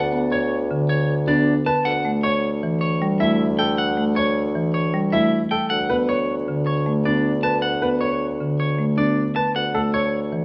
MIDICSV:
0, 0, Header, 1, 5, 480
1, 0, Start_track
1, 0, Tempo, 384615
1, 2324, Time_signature, 5, 2, 24, 8
1, 13039, End_track
2, 0, Start_track
2, 0, Title_t, "Clean electric guitar"
2, 0, Program_c, 0, 27
2, 0, Note_on_c, 0, 78, 74
2, 233, Note_off_c, 0, 78, 0
2, 404, Note_on_c, 0, 73, 66
2, 715, Note_off_c, 0, 73, 0
2, 1115, Note_on_c, 0, 73, 60
2, 1432, Note_off_c, 0, 73, 0
2, 1595, Note_on_c, 0, 74, 63
2, 1912, Note_off_c, 0, 74, 0
2, 2076, Note_on_c, 0, 81, 75
2, 2310, Note_on_c, 0, 78, 79
2, 2393, Note_off_c, 0, 81, 0
2, 2631, Note_off_c, 0, 78, 0
2, 2788, Note_on_c, 0, 73, 66
2, 3110, Note_off_c, 0, 73, 0
2, 3507, Note_on_c, 0, 73, 53
2, 3829, Note_off_c, 0, 73, 0
2, 3996, Note_on_c, 0, 76, 70
2, 4313, Note_off_c, 0, 76, 0
2, 4476, Note_on_c, 0, 79, 75
2, 4716, Note_off_c, 0, 79, 0
2, 4721, Note_on_c, 0, 78, 84
2, 5034, Note_off_c, 0, 78, 0
2, 5195, Note_on_c, 0, 73, 69
2, 5512, Note_off_c, 0, 73, 0
2, 5916, Note_on_c, 0, 73, 59
2, 6233, Note_off_c, 0, 73, 0
2, 6396, Note_on_c, 0, 76, 63
2, 6713, Note_off_c, 0, 76, 0
2, 6877, Note_on_c, 0, 79, 67
2, 7107, Note_off_c, 0, 79, 0
2, 7112, Note_on_c, 0, 78, 78
2, 7431, Note_off_c, 0, 78, 0
2, 7598, Note_on_c, 0, 73, 64
2, 7913, Note_off_c, 0, 73, 0
2, 8320, Note_on_c, 0, 73, 56
2, 8634, Note_off_c, 0, 73, 0
2, 8804, Note_on_c, 0, 74, 58
2, 9115, Note_off_c, 0, 74, 0
2, 9275, Note_on_c, 0, 81, 68
2, 9506, Note_off_c, 0, 81, 0
2, 9511, Note_on_c, 0, 78, 72
2, 9831, Note_off_c, 0, 78, 0
2, 9992, Note_on_c, 0, 73, 60
2, 10311, Note_off_c, 0, 73, 0
2, 10730, Note_on_c, 0, 73, 54
2, 11038, Note_off_c, 0, 73, 0
2, 11203, Note_on_c, 0, 74, 59
2, 11515, Note_off_c, 0, 74, 0
2, 11679, Note_on_c, 0, 81, 61
2, 11923, Note_off_c, 0, 81, 0
2, 11928, Note_on_c, 0, 78, 71
2, 12237, Note_off_c, 0, 78, 0
2, 12402, Note_on_c, 0, 73, 65
2, 12715, Note_off_c, 0, 73, 0
2, 13039, End_track
3, 0, Start_track
3, 0, Title_t, "Grand piano"
3, 0, Program_c, 1, 0
3, 394, Note_on_c, 1, 73, 60
3, 712, Note_off_c, 1, 73, 0
3, 1591, Note_on_c, 1, 62, 82
3, 1911, Note_off_c, 1, 62, 0
3, 2075, Note_on_c, 1, 71, 70
3, 2393, Note_off_c, 1, 71, 0
3, 2796, Note_on_c, 1, 73, 66
3, 3113, Note_off_c, 1, 73, 0
3, 3996, Note_on_c, 1, 64, 70
3, 4313, Note_off_c, 1, 64, 0
3, 4480, Note_on_c, 1, 69, 61
3, 4794, Note_off_c, 1, 69, 0
3, 5203, Note_on_c, 1, 73, 65
3, 5515, Note_off_c, 1, 73, 0
3, 6403, Note_on_c, 1, 64, 79
3, 6715, Note_off_c, 1, 64, 0
3, 6881, Note_on_c, 1, 69, 64
3, 7195, Note_off_c, 1, 69, 0
3, 7357, Note_on_c, 1, 71, 77
3, 7596, Note_on_c, 1, 73, 58
3, 7673, Note_off_c, 1, 71, 0
3, 7913, Note_off_c, 1, 73, 0
3, 8801, Note_on_c, 1, 62, 70
3, 9115, Note_off_c, 1, 62, 0
3, 9281, Note_on_c, 1, 71, 59
3, 9594, Note_off_c, 1, 71, 0
3, 9760, Note_on_c, 1, 71, 70
3, 10000, Note_on_c, 1, 73, 52
3, 10074, Note_off_c, 1, 71, 0
3, 10314, Note_off_c, 1, 73, 0
3, 11197, Note_on_c, 1, 62, 65
3, 11513, Note_off_c, 1, 62, 0
3, 11684, Note_on_c, 1, 71, 52
3, 11996, Note_off_c, 1, 71, 0
3, 12163, Note_on_c, 1, 69, 73
3, 12403, Note_on_c, 1, 73, 64
3, 12475, Note_off_c, 1, 69, 0
3, 12715, Note_off_c, 1, 73, 0
3, 13039, End_track
4, 0, Start_track
4, 0, Title_t, "Marimba"
4, 0, Program_c, 2, 12
4, 154, Note_on_c, 2, 59, 59
4, 472, Note_off_c, 2, 59, 0
4, 882, Note_on_c, 2, 50, 68
4, 1195, Note_off_c, 2, 50, 0
4, 1602, Note_on_c, 2, 59, 64
4, 1915, Note_off_c, 2, 59, 0
4, 2557, Note_on_c, 2, 57, 61
4, 2873, Note_off_c, 2, 57, 0
4, 3284, Note_on_c, 2, 52, 71
4, 3595, Note_off_c, 2, 52, 0
4, 3765, Note_on_c, 2, 55, 81
4, 3998, Note_on_c, 2, 57, 66
4, 4076, Note_off_c, 2, 55, 0
4, 4314, Note_off_c, 2, 57, 0
4, 4957, Note_on_c, 2, 57, 60
4, 5273, Note_off_c, 2, 57, 0
4, 5681, Note_on_c, 2, 52, 67
4, 5995, Note_off_c, 2, 52, 0
4, 6163, Note_on_c, 2, 55, 79
4, 6404, Note_on_c, 2, 57, 61
4, 6475, Note_off_c, 2, 55, 0
4, 6716, Note_off_c, 2, 57, 0
4, 7366, Note_on_c, 2, 59, 56
4, 7676, Note_off_c, 2, 59, 0
4, 8089, Note_on_c, 2, 50, 63
4, 8398, Note_off_c, 2, 50, 0
4, 8565, Note_on_c, 2, 57, 70
4, 8803, Note_on_c, 2, 59, 61
4, 8876, Note_off_c, 2, 57, 0
4, 9115, Note_off_c, 2, 59, 0
4, 9770, Note_on_c, 2, 59, 55
4, 10078, Note_off_c, 2, 59, 0
4, 10490, Note_on_c, 2, 50, 57
4, 10797, Note_off_c, 2, 50, 0
4, 10964, Note_on_c, 2, 57, 62
4, 11198, Note_on_c, 2, 59, 56
4, 11276, Note_off_c, 2, 57, 0
4, 11514, Note_off_c, 2, 59, 0
4, 12163, Note_on_c, 2, 57, 55
4, 12475, Note_off_c, 2, 57, 0
4, 12885, Note_on_c, 2, 52, 60
4, 13039, Note_off_c, 2, 52, 0
4, 13039, End_track
5, 0, Start_track
5, 0, Title_t, "Bassoon"
5, 0, Program_c, 3, 70
5, 0, Note_on_c, 3, 38, 75
5, 2178, Note_off_c, 3, 38, 0
5, 2326, Note_on_c, 3, 38, 79
5, 6979, Note_off_c, 3, 38, 0
5, 7124, Note_on_c, 3, 38, 70
5, 11778, Note_off_c, 3, 38, 0
5, 11928, Note_on_c, 3, 38, 71
5, 13039, Note_off_c, 3, 38, 0
5, 13039, End_track
0, 0, End_of_file